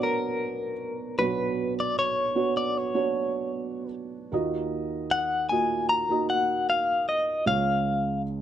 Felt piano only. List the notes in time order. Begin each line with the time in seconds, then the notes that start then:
Already playing: B1 B2 B3 D4 F#4 C#5 D5
1.18 B1 B2 B3 D4 F#4 C#5
2.35 B3 D4 F#4 C#5
2.94 B3 D4 F#4 C#5
4.32 D#2 D#3 A#3 F4 F#4 D#5
5.51 A#3 F4 F#4 D#5
6.09 A#3 D#4 F#4 D#5
7.46 C#2 C#3 G#3 C#4 F4 C#5